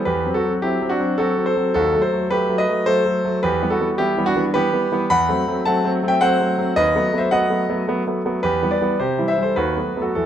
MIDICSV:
0, 0, Header, 1, 2, 480
1, 0, Start_track
1, 0, Key_signature, 1, "minor"
1, 0, Tempo, 558659
1, 52, Time_signature, 3, 2, 24, 8
1, 7251, Tempo, 575816
1, 8767, End_track
2, 0, Start_track
2, 0, Title_t, "Grand piano"
2, 0, Program_c, 0, 0
2, 45, Note_on_c, 0, 71, 84
2, 53, Note_on_c, 0, 40, 68
2, 57, Note_on_c, 0, 67, 62
2, 209, Note_off_c, 0, 40, 0
2, 218, Note_on_c, 0, 54, 53
2, 219, Note_on_c, 0, 60, 55
2, 279, Note_off_c, 0, 67, 0
2, 291, Note_off_c, 0, 71, 0
2, 295, Note_on_c, 0, 69, 81
2, 307, Note_on_c, 0, 66, 59
2, 332, Note_off_c, 0, 54, 0
2, 333, Note_off_c, 0, 60, 0
2, 380, Note_on_c, 0, 54, 49
2, 385, Note_on_c, 0, 60, 50
2, 439, Note_off_c, 0, 69, 0
2, 493, Note_off_c, 0, 54, 0
2, 496, Note_off_c, 0, 60, 0
2, 525, Note_off_c, 0, 66, 0
2, 534, Note_on_c, 0, 67, 77
2, 542, Note_on_c, 0, 54, 49
2, 545, Note_on_c, 0, 60, 55
2, 545, Note_on_c, 0, 64, 62
2, 655, Note_off_c, 0, 54, 0
2, 657, Note_off_c, 0, 60, 0
2, 698, Note_on_c, 0, 54, 49
2, 704, Note_on_c, 0, 60, 56
2, 764, Note_off_c, 0, 64, 0
2, 768, Note_on_c, 0, 66, 82
2, 775, Note_off_c, 0, 67, 0
2, 778, Note_on_c, 0, 62, 62
2, 812, Note_off_c, 0, 54, 0
2, 816, Note_off_c, 0, 60, 0
2, 855, Note_on_c, 0, 54, 49
2, 859, Note_on_c, 0, 60, 60
2, 971, Note_off_c, 0, 54, 0
2, 973, Note_off_c, 0, 60, 0
2, 1001, Note_off_c, 0, 62, 0
2, 1011, Note_off_c, 0, 66, 0
2, 1012, Note_on_c, 0, 69, 91
2, 1019, Note_on_c, 0, 54, 60
2, 1022, Note_on_c, 0, 60, 62
2, 1024, Note_on_c, 0, 66, 73
2, 1134, Note_off_c, 0, 54, 0
2, 1136, Note_off_c, 0, 60, 0
2, 1184, Note_on_c, 0, 54, 46
2, 1186, Note_on_c, 0, 60, 53
2, 1245, Note_off_c, 0, 66, 0
2, 1250, Note_off_c, 0, 69, 0
2, 1253, Note_on_c, 0, 72, 84
2, 1263, Note_on_c, 0, 69, 64
2, 1298, Note_off_c, 0, 54, 0
2, 1298, Note_off_c, 0, 60, 0
2, 1344, Note_on_c, 0, 54, 54
2, 1346, Note_on_c, 0, 60, 54
2, 1457, Note_off_c, 0, 54, 0
2, 1459, Note_off_c, 0, 60, 0
2, 1484, Note_off_c, 0, 69, 0
2, 1496, Note_off_c, 0, 72, 0
2, 1497, Note_on_c, 0, 69, 94
2, 1505, Note_on_c, 0, 39, 74
2, 1507, Note_on_c, 0, 66, 64
2, 1658, Note_off_c, 0, 39, 0
2, 1665, Note_on_c, 0, 54, 56
2, 1669, Note_on_c, 0, 57, 58
2, 1728, Note_off_c, 0, 66, 0
2, 1731, Note_off_c, 0, 69, 0
2, 1733, Note_on_c, 0, 72, 78
2, 1744, Note_on_c, 0, 69, 60
2, 1779, Note_off_c, 0, 54, 0
2, 1782, Note_off_c, 0, 57, 0
2, 1823, Note_on_c, 0, 54, 49
2, 1826, Note_on_c, 0, 57, 56
2, 1938, Note_off_c, 0, 54, 0
2, 1940, Note_off_c, 0, 57, 0
2, 1954, Note_off_c, 0, 72, 0
2, 1967, Note_off_c, 0, 69, 0
2, 1980, Note_on_c, 0, 71, 89
2, 1984, Note_on_c, 0, 54, 52
2, 1988, Note_on_c, 0, 57, 57
2, 1990, Note_on_c, 0, 67, 68
2, 2099, Note_off_c, 0, 54, 0
2, 2101, Note_off_c, 0, 57, 0
2, 2142, Note_on_c, 0, 54, 56
2, 2146, Note_on_c, 0, 57, 57
2, 2197, Note_off_c, 0, 71, 0
2, 2210, Note_off_c, 0, 67, 0
2, 2219, Note_on_c, 0, 75, 88
2, 2231, Note_on_c, 0, 71, 73
2, 2257, Note_off_c, 0, 54, 0
2, 2260, Note_off_c, 0, 57, 0
2, 2307, Note_on_c, 0, 54, 52
2, 2310, Note_on_c, 0, 57, 57
2, 2420, Note_off_c, 0, 54, 0
2, 2422, Note_off_c, 0, 57, 0
2, 2450, Note_off_c, 0, 71, 0
2, 2459, Note_on_c, 0, 72, 101
2, 2460, Note_off_c, 0, 75, 0
2, 2461, Note_on_c, 0, 54, 59
2, 2466, Note_on_c, 0, 57, 62
2, 2468, Note_on_c, 0, 69, 72
2, 2577, Note_off_c, 0, 54, 0
2, 2580, Note_off_c, 0, 57, 0
2, 2623, Note_on_c, 0, 54, 48
2, 2625, Note_on_c, 0, 57, 57
2, 2738, Note_off_c, 0, 54, 0
2, 2740, Note_off_c, 0, 57, 0
2, 2789, Note_on_c, 0, 54, 57
2, 2792, Note_on_c, 0, 57, 63
2, 2903, Note_off_c, 0, 54, 0
2, 2905, Note_off_c, 0, 57, 0
2, 2908, Note_off_c, 0, 72, 0
2, 2914, Note_off_c, 0, 69, 0
2, 2945, Note_on_c, 0, 71, 91
2, 2951, Note_on_c, 0, 40, 72
2, 2958, Note_on_c, 0, 67, 69
2, 3104, Note_off_c, 0, 40, 0
2, 3113, Note_on_c, 0, 52, 52
2, 3115, Note_on_c, 0, 55, 59
2, 3116, Note_on_c, 0, 59, 60
2, 3162, Note_off_c, 0, 71, 0
2, 3176, Note_off_c, 0, 67, 0
2, 3182, Note_on_c, 0, 69, 82
2, 3195, Note_on_c, 0, 66, 66
2, 3226, Note_off_c, 0, 52, 0
2, 3227, Note_off_c, 0, 55, 0
2, 3228, Note_off_c, 0, 59, 0
2, 3265, Note_on_c, 0, 52, 48
2, 3271, Note_on_c, 0, 55, 48
2, 3276, Note_on_c, 0, 59, 53
2, 3327, Note_off_c, 0, 69, 0
2, 3381, Note_off_c, 0, 52, 0
2, 3384, Note_off_c, 0, 55, 0
2, 3387, Note_off_c, 0, 59, 0
2, 3414, Note_off_c, 0, 66, 0
2, 3421, Note_on_c, 0, 67, 93
2, 3428, Note_on_c, 0, 52, 55
2, 3431, Note_on_c, 0, 64, 71
2, 3432, Note_on_c, 0, 55, 53
2, 3435, Note_on_c, 0, 59, 59
2, 3542, Note_off_c, 0, 52, 0
2, 3544, Note_off_c, 0, 55, 0
2, 3546, Note_off_c, 0, 59, 0
2, 3589, Note_on_c, 0, 52, 54
2, 3593, Note_on_c, 0, 55, 55
2, 3595, Note_on_c, 0, 59, 59
2, 3638, Note_off_c, 0, 67, 0
2, 3650, Note_off_c, 0, 64, 0
2, 3660, Note_on_c, 0, 66, 96
2, 3673, Note_on_c, 0, 62, 65
2, 3702, Note_off_c, 0, 52, 0
2, 3704, Note_off_c, 0, 55, 0
2, 3705, Note_off_c, 0, 59, 0
2, 3744, Note_on_c, 0, 52, 55
2, 3748, Note_on_c, 0, 55, 52
2, 3751, Note_on_c, 0, 59, 61
2, 3804, Note_off_c, 0, 66, 0
2, 3858, Note_off_c, 0, 52, 0
2, 3861, Note_off_c, 0, 55, 0
2, 3863, Note_off_c, 0, 59, 0
2, 3890, Note_off_c, 0, 62, 0
2, 3899, Note_on_c, 0, 71, 100
2, 3905, Note_on_c, 0, 52, 63
2, 3909, Note_on_c, 0, 55, 58
2, 3910, Note_on_c, 0, 67, 77
2, 3912, Note_on_c, 0, 59, 63
2, 4018, Note_off_c, 0, 52, 0
2, 4021, Note_off_c, 0, 55, 0
2, 4023, Note_off_c, 0, 59, 0
2, 4063, Note_on_c, 0, 52, 50
2, 4065, Note_on_c, 0, 55, 52
2, 4070, Note_on_c, 0, 59, 57
2, 4177, Note_off_c, 0, 52, 0
2, 4178, Note_off_c, 0, 55, 0
2, 4181, Note_off_c, 0, 59, 0
2, 4224, Note_on_c, 0, 52, 60
2, 4230, Note_on_c, 0, 55, 58
2, 4233, Note_on_c, 0, 59, 65
2, 4337, Note_off_c, 0, 52, 0
2, 4341, Note_off_c, 0, 55, 0
2, 4342, Note_off_c, 0, 59, 0
2, 4349, Note_off_c, 0, 67, 0
2, 4377, Note_off_c, 0, 71, 0
2, 4382, Note_on_c, 0, 83, 109
2, 4384, Note_on_c, 0, 40, 73
2, 4389, Note_on_c, 0, 78, 87
2, 4536, Note_off_c, 0, 40, 0
2, 4542, Note_on_c, 0, 54, 57
2, 4545, Note_on_c, 0, 57, 56
2, 4547, Note_on_c, 0, 60, 58
2, 4656, Note_off_c, 0, 54, 0
2, 4657, Note_off_c, 0, 57, 0
2, 4659, Note_off_c, 0, 60, 0
2, 4702, Note_on_c, 0, 54, 54
2, 4707, Note_on_c, 0, 57, 55
2, 4709, Note_on_c, 0, 60, 57
2, 4816, Note_off_c, 0, 54, 0
2, 4819, Note_off_c, 0, 57, 0
2, 4821, Note_off_c, 0, 60, 0
2, 4830, Note_off_c, 0, 78, 0
2, 4858, Note_on_c, 0, 81, 90
2, 4860, Note_off_c, 0, 83, 0
2, 4864, Note_on_c, 0, 54, 60
2, 4869, Note_on_c, 0, 57, 60
2, 4869, Note_on_c, 0, 60, 63
2, 4870, Note_on_c, 0, 78, 69
2, 4977, Note_off_c, 0, 54, 0
2, 4980, Note_off_c, 0, 57, 0
2, 4981, Note_off_c, 0, 60, 0
2, 5017, Note_on_c, 0, 54, 61
2, 5022, Note_on_c, 0, 57, 60
2, 5026, Note_on_c, 0, 60, 64
2, 5074, Note_off_c, 0, 81, 0
2, 5132, Note_off_c, 0, 54, 0
2, 5136, Note_off_c, 0, 57, 0
2, 5138, Note_off_c, 0, 60, 0
2, 5178, Note_on_c, 0, 54, 57
2, 5182, Note_on_c, 0, 57, 58
2, 5186, Note_on_c, 0, 60, 65
2, 5199, Note_off_c, 0, 78, 0
2, 5225, Note_on_c, 0, 79, 95
2, 5233, Note_on_c, 0, 76, 66
2, 5293, Note_off_c, 0, 54, 0
2, 5295, Note_off_c, 0, 57, 0
2, 5297, Note_off_c, 0, 60, 0
2, 5334, Note_on_c, 0, 78, 110
2, 5337, Note_off_c, 0, 76, 0
2, 5337, Note_on_c, 0, 54, 67
2, 5339, Note_on_c, 0, 57, 63
2, 5340, Note_off_c, 0, 79, 0
2, 5342, Note_on_c, 0, 72, 84
2, 5347, Note_on_c, 0, 60, 68
2, 5451, Note_off_c, 0, 54, 0
2, 5452, Note_off_c, 0, 57, 0
2, 5457, Note_off_c, 0, 60, 0
2, 5500, Note_on_c, 0, 54, 55
2, 5502, Note_on_c, 0, 57, 54
2, 5507, Note_on_c, 0, 60, 59
2, 5611, Note_off_c, 0, 54, 0
2, 5613, Note_off_c, 0, 57, 0
2, 5616, Note_off_c, 0, 60, 0
2, 5652, Note_on_c, 0, 54, 59
2, 5658, Note_on_c, 0, 57, 55
2, 5659, Note_on_c, 0, 60, 61
2, 5765, Note_off_c, 0, 54, 0
2, 5770, Note_off_c, 0, 57, 0
2, 5771, Note_off_c, 0, 60, 0
2, 5774, Note_off_c, 0, 78, 0
2, 5780, Note_off_c, 0, 72, 0
2, 5810, Note_on_c, 0, 75, 102
2, 5815, Note_on_c, 0, 39, 73
2, 5819, Note_on_c, 0, 71, 76
2, 5966, Note_off_c, 0, 39, 0
2, 5973, Note_on_c, 0, 54, 57
2, 5976, Note_on_c, 0, 57, 60
2, 5980, Note_on_c, 0, 59, 64
2, 6086, Note_off_c, 0, 54, 0
2, 6087, Note_off_c, 0, 57, 0
2, 6090, Note_off_c, 0, 59, 0
2, 6127, Note_on_c, 0, 54, 52
2, 6130, Note_on_c, 0, 57, 50
2, 6133, Note_on_c, 0, 59, 56
2, 6146, Note_off_c, 0, 71, 0
2, 6167, Note_off_c, 0, 75, 0
2, 6167, Note_on_c, 0, 76, 86
2, 6178, Note_on_c, 0, 72, 67
2, 6242, Note_off_c, 0, 54, 0
2, 6244, Note_off_c, 0, 57, 0
2, 6245, Note_off_c, 0, 59, 0
2, 6282, Note_on_c, 0, 78, 95
2, 6284, Note_off_c, 0, 72, 0
2, 6286, Note_off_c, 0, 76, 0
2, 6288, Note_on_c, 0, 54, 56
2, 6292, Note_on_c, 0, 57, 57
2, 6293, Note_on_c, 0, 75, 73
2, 6294, Note_on_c, 0, 59, 64
2, 6403, Note_off_c, 0, 54, 0
2, 6405, Note_off_c, 0, 57, 0
2, 6406, Note_off_c, 0, 59, 0
2, 6441, Note_on_c, 0, 54, 55
2, 6444, Note_on_c, 0, 57, 58
2, 6446, Note_on_c, 0, 59, 58
2, 6558, Note_off_c, 0, 54, 0
2, 6561, Note_off_c, 0, 57, 0
2, 6562, Note_off_c, 0, 59, 0
2, 6572, Note_off_c, 0, 78, 0
2, 6605, Note_on_c, 0, 54, 60
2, 6612, Note_on_c, 0, 57, 56
2, 6613, Note_on_c, 0, 59, 60
2, 6721, Note_off_c, 0, 54, 0
2, 6726, Note_off_c, 0, 57, 0
2, 6727, Note_off_c, 0, 59, 0
2, 6738, Note_off_c, 0, 75, 0
2, 6768, Note_on_c, 0, 54, 63
2, 6772, Note_on_c, 0, 57, 55
2, 6777, Note_on_c, 0, 59, 66
2, 6884, Note_off_c, 0, 54, 0
2, 6886, Note_off_c, 0, 57, 0
2, 6889, Note_off_c, 0, 59, 0
2, 6934, Note_on_c, 0, 54, 47
2, 6934, Note_on_c, 0, 57, 52
2, 6940, Note_on_c, 0, 59, 52
2, 7047, Note_off_c, 0, 54, 0
2, 7048, Note_off_c, 0, 57, 0
2, 7051, Note_off_c, 0, 59, 0
2, 7090, Note_on_c, 0, 54, 54
2, 7093, Note_on_c, 0, 57, 54
2, 7096, Note_on_c, 0, 59, 59
2, 7205, Note_off_c, 0, 54, 0
2, 7207, Note_off_c, 0, 57, 0
2, 7208, Note_off_c, 0, 59, 0
2, 7242, Note_on_c, 0, 71, 93
2, 7246, Note_on_c, 0, 40, 66
2, 7253, Note_on_c, 0, 67, 70
2, 7399, Note_off_c, 0, 40, 0
2, 7405, Note_on_c, 0, 52, 50
2, 7411, Note_on_c, 0, 55, 53
2, 7411, Note_on_c, 0, 59, 55
2, 7469, Note_off_c, 0, 67, 0
2, 7475, Note_off_c, 0, 71, 0
2, 7476, Note_on_c, 0, 74, 78
2, 7487, Note_on_c, 0, 71, 64
2, 7518, Note_off_c, 0, 52, 0
2, 7522, Note_off_c, 0, 55, 0
2, 7522, Note_off_c, 0, 59, 0
2, 7562, Note_on_c, 0, 52, 45
2, 7565, Note_on_c, 0, 55, 48
2, 7570, Note_on_c, 0, 59, 55
2, 7675, Note_off_c, 0, 52, 0
2, 7677, Note_off_c, 0, 55, 0
2, 7680, Note_off_c, 0, 59, 0
2, 7705, Note_off_c, 0, 71, 0
2, 7715, Note_on_c, 0, 72, 73
2, 7716, Note_off_c, 0, 74, 0
2, 7718, Note_on_c, 0, 48, 65
2, 7724, Note_on_c, 0, 67, 58
2, 7873, Note_off_c, 0, 48, 0
2, 7873, Note_on_c, 0, 52, 48
2, 7876, Note_on_c, 0, 55, 52
2, 7877, Note_on_c, 0, 64, 55
2, 7932, Note_off_c, 0, 72, 0
2, 7944, Note_off_c, 0, 67, 0
2, 7952, Note_on_c, 0, 76, 87
2, 7961, Note_on_c, 0, 72, 71
2, 7990, Note_off_c, 0, 52, 0
2, 7992, Note_off_c, 0, 55, 0
2, 7993, Note_off_c, 0, 64, 0
2, 8030, Note_on_c, 0, 52, 45
2, 8033, Note_on_c, 0, 55, 47
2, 8036, Note_on_c, 0, 64, 53
2, 8063, Note_off_c, 0, 72, 0
2, 8075, Note_off_c, 0, 76, 0
2, 8075, Note_on_c, 0, 72, 70
2, 8086, Note_on_c, 0, 69, 51
2, 8149, Note_off_c, 0, 52, 0
2, 8151, Note_off_c, 0, 55, 0
2, 8153, Note_off_c, 0, 64, 0
2, 8186, Note_on_c, 0, 71, 81
2, 8194, Note_on_c, 0, 39, 65
2, 8194, Note_on_c, 0, 66, 65
2, 8195, Note_off_c, 0, 69, 0
2, 8197, Note_off_c, 0, 72, 0
2, 8354, Note_off_c, 0, 39, 0
2, 8357, Note_on_c, 0, 54, 40
2, 8359, Note_on_c, 0, 57, 38
2, 8362, Note_on_c, 0, 59, 44
2, 8476, Note_off_c, 0, 54, 0
2, 8477, Note_off_c, 0, 57, 0
2, 8479, Note_off_c, 0, 59, 0
2, 8521, Note_on_c, 0, 54, 45
2, 8525, Note_on_c, 0, 57, 43
2, 8529, Note_on_c, 0, 59, 47
2, 8537, Note_off_c, 0, 66, 0
2, 8559, Note_off_c, 0, 71, 0
2, 8565, Note_on_c, 0, 69, 67
2, 8575, Note_on_c, 0, 66, 52
2, 8640, Note_off_c, 0, 54, 0
2, 8643, Note_off_c, 0, 57, 0
2, 8645, Note_off_c, 0, 59, 0
2, 8666, Note_off_c, 0, 69, 0
2, 8679, Note_on_c, 0, 69, 74
2, 8685, Note_off_c, 0, 66, 0
2, 8686, Note_on_c, 0, 40, 55
2, 8690, Note_on_c, 0, 64, 57
2, 8767, Note_off_c, 0, 40, 0
2, 8767, Note_off_c, 0, 64, 0
2, 8767, Note_off_c, 0, 69, 0
2, 8767, End_track
0, 0, End_of_file